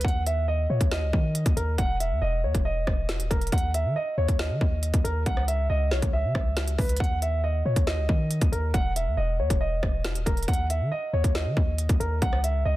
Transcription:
0.01 0.67 D#2 loud
0.01 0.22 F#5 loud
0.01 kick loud
0.01 closed hi-hat medium
0.08 closed hi-hat medium
0.27 0.44 E5 medium
0.27 closed hi-hat medium
0.48 0.66 D#5 medium
0.70 0.80 A#2 loud
0.70 0.88 C#5 medium
0.81 1.04 D#2 loud
0.81 kick loud
0.81 closed hi-hat medium
0.92 1.53 D#5 medium
0.92 snare loud
1.02 1.13 C#2 loud
1.13 1.45 D#3 loud
1.13 kick loud
1.35 closed hi-hat medium
1.46 1.56 D#2 loud
1.46 kick loud
1.46 closed hi-hat medium
1.57 1.78 D#2 loud
1.57 1.74 A#4 medium
1.57 closed hi-hat medium
1.78 2.13 E1 loud
1.78 1.96 F#5 loud
1.78 kick loud
1.78 closed hi-hat medium
2.00 2.18 E5 medium
2.00 closed hi-hat medium
2.11 2.21 E2 loud
2.22 2.45 E1 loud
2.22 2.39 D#5 medium
2.44 2.54 E2 loud
2.44 2.62 C#5 medium
2.55 2.86 E1 loud
2.55 kick loud
2.55 closed hi-hat medium
2.65 3.27 D#5 medium
2.87 3.21 E1 loud
2.87 kick medium
2.87 cross-stick medium
3.09 snare loud
3.09 closed hi-hat medium
3.20 3.30 D#1 loud
3.20 closed hi-hat medium
3.30 3.52 E1 loud
3.30 3.48 A#4 medium
3.30 kick medium
3.30 closed hi-hat medium
3.41 closed hi-hat soft
3.47 closed hi-hat medium
3.52 3.86 D#2 loud
3.52 3.70 F#5 loud
3.52 kick loud
3.52 closed hi-hat medium
3.58 closed hi-hat medium
3.74 3.92 E5 medium
3.74 closed hi-hat medium
3.85 3.95 D#3 loud
3.96 4.14 D#5 medium
4.18 4.28 D#2 loud
4.18 4.35 C#5 medium
4.28 4.52 D#2 loud
4.28 kick medium
4.28 closed hi-hat medium
4.39 5.01 D#5 medium
4.39 snare loud
4.50 4.60 D#3 loud
4.61 4.92 D#2 loud
4.61 kick medium
4.83 closed hi-hat medium
4.94 5.04 D#2 loud
4.94 kick loud
4.94 closed hi-hat medium
5.04 5.25 D#2 loud
5.04 5.22 A#4 medium
5.04 closed hi-hat medium
5.26 5.68 C#2 loud
5.26 5.44 F#5 loud
5.26 kick loud
5.26 closed hi-hat medium
5.37 cross-stick medium
5.48 5.66 E5 medium
5.48 closed hi-hat medium
5.70 5.93 C#2 loud
5.70 5.87 D#5 medium
5.91 6.02 B1 loud
5.91 6.09 C#5 medium
5.91 snare medium
6.02 6.26 C#2 loud
6.02 kick medium
6.02 closed hi-hat medium
6.13 6.75 E5 medium
6.24 6.34 C#3 loud
6.35 6.77 C#2 loud
6.35 kick loud
6.35 cross-stick medium
6.57 snare loud
6.57 closed hi-hat medium
6.68 closed hi-hat medium
6.78 6.99 C#2 loud
6.78 6.96 B4 medium
6.78 kick loud
6.78 open hi-hat medium
6.89 closed hi-hat medium
6.97 7.63 D#2 loud
6.97 7.18 F#5 loud
6.97 kick loud
6.97 closed hi-hat medium
7.04 closed hi-hat medium
7.22 7.40 E5 medium
7.22 closed hi-hat medium
7.44 7.61 D#5 medium
7.65 7.76 A#2 loud
7.65 7.83 C#5 medium
7.76 7.99 D#2 loud
7.76 kick medium
7.76 closed hi-hat medium
7.87 8.49 D#5 medium
7.87 snare loud
7.98 8.08 C#2 loud
8.09 8.40 D#3 loud
8.09 kick loud
8.31 closed hi-hat medium
8.41 8.52 D#2 loud
8.41 kick loud
8.41 closed hi-hat medium
8.52 8.73 D#2 loud
8.52 8.70 A#4 medium
8.52 closed hi-hat medium
8.74 9.08 E1 loud
8.74 8.92 F#5 loud
8.74 kick loud
8.74 closed hi-hat medium
8.96 9.14 E5 medium
8.96 closed hi-hat medium
9.07 9.17 E2 loud
9.17 9.41 E1 loud
9.17 9.35 D#5 medium
9.39 9.50 E2 medium
9.39 9.57 C#5 medium
9.50 9.81 E1 loud
9.50 kick medium
9.50 closed hi-hat medium
9.61 10.22 D#5 medium
9.83 10.17 E1 loud
9.83 kick loud
9.83 cross-stick medium
10.05 snare loud
10.05 closed hi-hat medium
10.15 10.26 D#1 loud
10.15 closed hi-hat medium
10.26 10.47 E1 loud
10.26 10.44 A#4 medium
10.26 kick loud
10.26 closed hi-hat medium
10.37 closed hi-hat soft
10.43 closed hi-hat medium
10.48 10.82 D#2 loud
10.48 10.66 F#5 loud
10.48 kick loud
10.48 closed hi-hat medium
10.54 closed hi-hat medium
10.70 10.88 E5 medium
10.70 closed hi-hat medium
10.81 10.91 D#3 loud
10.92 11.09 D#5 medium
11.13 11.24 D#2 loud
11.13 11.31 C#5 medium
11.24 11.47 D#2 loud
11.24 kick loud
11.24 closed hi-hat medium
11.35 11.96 D#5 medium
11.35 snare loud
11.46 11.56 D#3 loud
11.57 11.88 D#2 loud
11.57 kick loud
11.78 closed hi-hat medium
11.89 12.00 D#2 loud
11.89 kick loud
11.89 closed hi-hat medium
12.00 12.21 D#2 loud
12.00 12.18 A#4 medium
12.00 closed hi-hat medium
12.22 12.64 C#2 loud
12.22 12.40 F#5 loud
12.22 kick loud
12.22 closed hi-hat medium
12.33 cross-stick medium
12.44 12.61 E5 medium
12.44 closed hi-hat medium
12.65 12.77 C#2 loud
12.65 12.77 D#5 medium

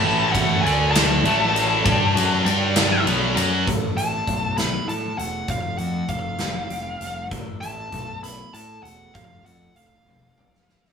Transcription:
0.00 0.60 A1 medium
0.00 0.63 A2 medium
0.00 0.63 E3 medium
0.00 2.43 A3 medium
0.00 0.63 C#4 medium
0.00 0.61 A4 medium
0.00 0.63 C#5 medium
0.00 0.32 A5 loud
0.04 0.63 E3 loud
0.04 0.63 A3 loud
0.32 0.61 F#5 medium
0.32 kick medium
0.32 ride medium
0.61 1.20 D2 loud
0.61 1.22 D3 medium
0.61 1.23 D3 medium
0.61 1.24 A3 loud
0.61 1.23 D4 medium
0.61 1.24 D4 loud
0.61 2.42 A4 medium
0.61 0.91 G#5 medium
0.66 ride medium
0.91 3.00 A5 medium
0.95 snare loud
0.95 ride loud
1.24 1.80 A1 medium
1.24 1.84 A2 medium
1.24 2.44 E3 medium
1.24 1.84 E3 medium
1.24 1.84 A3 medium
1.24 2.44 C#4 medium
1.24 2.44 C#5 medium
1.24 ride medium
1.56 ride medium
1.85 2.13 G2 medium
1.85 2.14 G3 loud
1.85 2.14 D4 loud
1.85 2.14 G4 loud
1.85 kick loud
1.85 ride loud
2.14 2.43 F#2 medium
2.14 2.44 F#3 medium
2.14 2.44 C#4 loud
2.14 2.44 F#4 loud
2.14 ride medium
2.43 3.01 G2 medium
2.43 3.05 D3 medium
2.43 3.04 G3 medium
2.43 3.05 G3 loud
2.43 3.04 D4 medium
2.43 3.04 D4 loud
2.43 3.05 G4 medium
2.43 3.04 G5 medium
2.43 ride medium
2.76 snare loud
2.76 ride loud
3.04 3.34 B1 medium
3.04 3.35 B2 medium
3.04 3.65 E3 medium
3.04 3.35 F#3 medium
3.04 3.65 A3 medium
3.04 3.35 B3 loud
3.04 3.65 C#4 medium
3.04 3.65 A4 medium
3.04 3.65 C#5 medium
3.04 ride medium
3.36 3.64 F#2 loud
3.36 3.65 F#3 medium
3.36 3.65 C#4 medium
3.36 3.65 F#4 loud
3.36 ride medium
3.67 3.91 A1 medium
3.67 4.26 A3 medium
3.67 kick loud
3.67 closed hi-hat medium
3.95 4.20 A1 medium
3.95 4.56 E4 medium
3.95 4.55 A5 medium
3.95 closed hi-hat medium
4.26 4.76 B1 medium
4.26 5.18 A3 medium
4.26 kick medium
4.26 closed hi-hat medium
4.57 5.48 E4 medium
4.57 4.87 B5 medium
4.57 snare loud
4.57 closed hi-hat medium
4.87 5.12 A2 medium
4.87 6.43 A4 medium
4.87 5.17 A5 medium
4.87 closed hi-hat medium
5.18 5.42 E1 medium
5.18 5.77 A3 medium
5.18 5.47 F#5 medium
5.18 closed hi-hat medium
5.48 5.73 F1 medium
5.48 7.00 F3 medium
5.48 5.79 F5 medium
5.48 kick medium
5.48 closed hi-hat medium
5.77 6.03 F2 medium
5.77 6.09 A3 medium
5.77 6.07 F#5 medium
5.77 closed hi-hat medium
6.08 6.33 F1 medium
6.08 7.00 A3 medium
6.08 7.27 F5 medium
6.08 kick medium
6.08 closed hi-hat medium
6.38 6.65 F1 medium
6.38 7.31 G3 medium
6.38 snare medium
6.38 closed hi-hat medium
6.70 6.95 F1 medium
6.70 7.31 G4 medium
6.70 closed hi-hat medium
7.00 7.32 F1 medium
7.00 7.31 A3 medium
7.00 closed hi-hat medium
7.31 7.56 A1 medium
7.31 7.92 A3 medium
7.31 kick medium
7.31 closed hi-hat medium
7.61 7.87 A1 medium
7.61 8.21 E4 medium
7.61 8.20 A5 medium
7.61 closed hi-hat medium
7.92 8.42 B1 medium
7.92 8.84 A3 medium
7.92 kick medium
7.92 closed hi-hat soft
8.22 9.14 E4 medium
8.22 8.53 B5 medium
8.22 closed hi-hat medium
8.53 8.78 A2 medium
8.53 10.09 A4 medium
8.53 8.83 A5 medium
8.53 closed hi-hat medium
8.83 9.08 E1 medium
8.83 9.44 A3 medium
8.83 9.13 F#5 medium
8.83 closed hi-hat soft
9.14 9.39 F1 medium
9.14 10.67 F3 medium
9.14 9.44 F5 medium
9.14 kick medium
9.14 closed hi-hat medium
9.43 9.68 F2 medium
9.43 9.75 A3 medium
9.43 9.74 F#5 medium
9.43 closed hi-hat soft
9.75 10.00 F1 medium
9.75 10.66 A3 medium
9.75 10.93 F5 medium
9.75 closed hi-hat soft
10.05 10.30 F1 medium
10.05 10.93 G3 medium
10.05 high tom soft
10.36 10.61 F1 medium
10.36 10.93 G4 medium
10.36 mid tom medium
10.54 snare medium
10.66 10.91 F1 medium
10.66 10.93 A3 medium
10.66 snare medium
10.85 snare medium

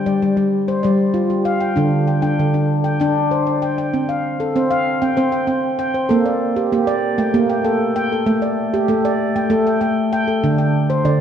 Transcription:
0.00 0.38 G5 medium
0.06 0.21 G3 medium
0.06 0.53 D5 medium
0.22 0.36 G3 medium
0.37 0.68 G3 medium
0.68 0.99 C5 medium
0.83 1.67 G3 medium
0.83 1.30 D5 medium
1.14 1.45 F4 medium
1.30 1.77 G4 medium
1.45 1.77 F5 medium
1.60 1.92 G5 medium
1.76 2.32 D3 medium
1.76 2.07 D4 medium
2.07 2.21 G5 medium
2.22 2.53 D4 medium
2.22 2.69 G5 medium
2.39 2.94 D3 medium
2.54 2.85 D4 medium
2.84 2.99 G5 medium
3.00 3.83 D4 medium
3.00 3.47 G5 medium
3.31 3.62 C5 medium
3.47 3.93 D5 medium
3.62 3.77 G5 medium
3.78 4.09 G5 medium
3.94 4.25 C4 medium
4.09 4.55 F5 medium
4.40 4.71 A4 medium
4.56 5.01 C4 medium
4.56 5.02 C5 medium
4.71 5.02 F5 medium
5.02 5.16 C4 medium
5.02 5.31 G5 medium
5.17 5.46 C4 medium
5.17 5.64 C5 medium
5.32 5.46 G5 medium
5.47 5.79 C4 medium
5.47 5.78 G5 medium
5.79 6.10 G5 medium
5.94 6.25 C5 medium
6.09 6.65 A#3 loud
6.09 6.41 A4 medium
6.26 6.72 D5 medium
6.56 6.72 G4 medium
6.72 7.27 A#3 medium
6.72 7.19 G4 medium
6.87 7.18 D5 medium
7.18 7.49 A3 medium
7.18 7.48 G5 medium
7.34 8.16 A#3 medium
7.34 7.80 G4 medium
7.50 7.64 G5 medium
7.65 7.96 A4 medium
7.65 7.95 G5 medium
7.96 8.27 G5 medium
8.12 8.43 A4 medium
8.26 8.81 A3 medium
8.42 8.88 D5 medium
8.74 9.04 G4 medium
8.88 9.34 A3 medium
8.88 9.35 A4 medium
9.05 9.35 D5 medium
9.36 9.49 A3 medium
9.36 9.66 G5 medium
9.50 9.80 A3 loud
9.50 9.97 A4 medium
9.67 9.80 G5 medium
9.81 10.12 A3 medium
9.81 10.11 G5 medium
10.13 10.43 G5 medium
10.28 10.58 A4 medium
10.43 10.98 D3 medium
10.43 10.74 D4 medium
10.58 11.05 G5 medium
10.90 11.20 C5 medium
11.05 11.21 D3 medium
11.05 11.21 D5 medium

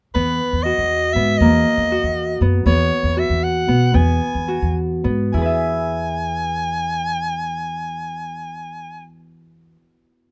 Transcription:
0.14 0.38 E2 medium
0.14 1.15 B3 medium
0.14 0.65 B4 medium
0.53 0.76 E2 medium
0.63 1.91 F#4 medium
0.63 1.14 D#5 medium
0.78 1.13 E2 medium
1.13 1.39 G#2 medium
1.13 1.47 B3 medium
1.13 1.39 E5 medium
1.38 1.64 E2 medium
1.38 2.48 A#3 medium
1.38 2.39 D#5 medium
1.77 2.01 E2 medium
1.92 3.16 F#4 medium
2.03 2.38 E2 medium
2.41 2.64 F#2 medium
2.41 2.66 B3 medium
2.66 2.89 E2 medium
2.66 3.68 B3 medium
2.66 3.20 C#5 medium
3.03 3.27 E2 medium
3.17 4.48 F#4 medium
3.17 3.45 E5 medium
3.29 3.65 E2 medium
3.43 3.97 F#5 medium
3.68 3.92 B2 medium
3.68 3.93 B3 medium
3.94 4.19 E2 medium
3.94 5.04 B3 medium
3.94 4.76 G#5 medium
4.34 4.60 E2 medium
4.48 6.92 F#4 medium
4.62 5.01 E2 medium
5.04 5.31 G#2 medium
5.04 8.15 B3 medium
5.33 9.75 E2 medium
5.33 9.75 E4 medium
5.33 9.05 G#5 medium
5.37 9.77 G#4 medium
5.42 9.79 B4 medium
5.46 9.81 E5 medium

